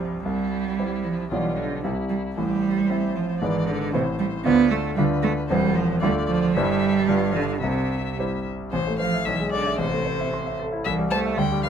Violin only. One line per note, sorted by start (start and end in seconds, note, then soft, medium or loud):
0.25 1.27 E4 soft
1.31 1.80 F4 soft
1.85 2.33 E4 soft
2.38 3.38 C5 soft
3.41 3.90 D5 medium
3.93 4.93 C5 medium
4.97 5.46 B4 medium
5.49 5.98 C5 medium
6.02 6.51 D5 medium
6.55 7.04 E5 medium
7.08 7.59 F5 medium
7.61 8.47 E5 soft
8.72 8.97 C5 medium
8.99 9.27 F5 medium
9.25 9.51 E5 medium
9.52 9.79 D5 medium
9.79 10.57 C5 medium
10.85 10.93 E5 medium
11.11 11.19 A5 medium
11.38 11.62 G5 medium
11.63 11.69 F5 medium